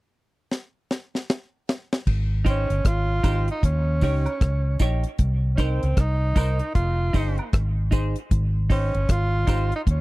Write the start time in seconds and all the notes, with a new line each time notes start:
0.52 snare
0.91 snare
1.15 snare
1.30 snare
1.69 snare
1.93 snare
2.07 G#1, kick, crash
2.45 D#4 G4 C5, kick, closed hi-hat, tambourine
2.49 C#4
2.70 G1, closed hi-hat
2.85 G#1 F4, kick, cross-stick, closed hi-hat
3.23 G#1 D#4 G4 C5, kick, closed hi-hat, tambourine, high woodblock
3.48 D#4, muted clean electric guitar stroke, closed hi-hat
3.63 D#2 C#4, kick, closed hi-hat
4.01 C#2 D#4 G4 C#5, kick, open hi-hat, tambourine
4.26 closed hi-hat, high woodblock
4.41 C#2, kick, cross-stick, closed hi-hat
4.79 A#1 D#4 G4 C#5, kick, closed hi-hat, tambourine
5.04 closed hi-hat
5.19 C2, kick, closed hi-hat
5.55 C#4 D#4, kick, closed hi-hat, tambourine
5.59 C4 A#4 C5
5.83 C#2, closed hi-hat
5.97 C2 D#4, kick, cross-stick, closed hi-hat
6.36 C2 D#4 A#4 C5, kick, closed hi-hat, tambourine, high woodblock
6.59 muted clean electric guitar stroke, closed hi-hat
6.75 F1 F4, kick, closed hi-hat
7.13 G1 D#4 G#4 C5, kick, open hi-hat, tambourine
7.38 closed hi-hat, high woodblock
7.53 G#1, kick, cross-stick, closed hi-hat
7.91 D#4 G#4 C5, kick, closed hi-hat, tambourine
8.16 closed hi-hat
8.31 G#1, kick, closed hi-hat
8.70 C#4 D#4 G4 C5, kick, open hi-hat, tambourine
8.95 G1, closed hi-hat
9.09 G#1 F4, kick, cross-stick, closed hi-hat
9.47 G#1 D#4 G4 C5, kick, closed hi-hat, tambourine, high woodblock
9.70 muted clean electric guitar stroke, closed hi-hat
9.76 D#4
9.87 D#2, kick, closed hi-hat
9.91 C#4